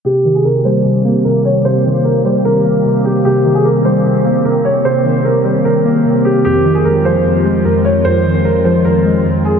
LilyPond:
<<
  \new Staff \with { instrumentName = "Grand piano" } { \time 4/4 \key c \minor \tempo 4 = 150 g'8. aes'16 bes'8 c''4. bes'8 des''8 | c''4 bes'8 c''8 bes'4. g'8 | g'8. aes'16 bes'8 c''4. bes'8 des''8 | c''4 bes'8 c''8 bes'4. g'8 |
g'8. aes'16 bes'8 c''4. bes'8 des''8 | c''4 bes'8 c''8 bes'4. aes'8 | }
  \new Staff \with { instrumentName = "Analog synth pad" } { \time 4/4 \key c \minor << { <bes g'>1~ | <bes g'>1~ | <bes g'>1~ | <bes g'>1 |
<aes f'>1~ | <aes f'>1 | } \\ { <ees c'>1~ | <ees c'>1~ | <ees c'>1~ | <ees c'>1~ |
<ees c'>1~ | <ees c'>1 | } >> }
  \new Staff \with { instrumentName = "Synth keys" } { \clef bass \time 4/4 \key c \minor c8 ees8 c8 g8 c8 bes8 c4 | c8 ees8 c8 g8 c8 bes8 c4 | c8 ees8 c8 g8 c8 bes8 c4 | c8 ees8 c8 g8 c8 bes8 c4 |
f,8 ees8 f,8 f8 f,8 aes8 f,4 | f,8 ees8 f,8 f8 f,8 aes8 f,4 | }
>>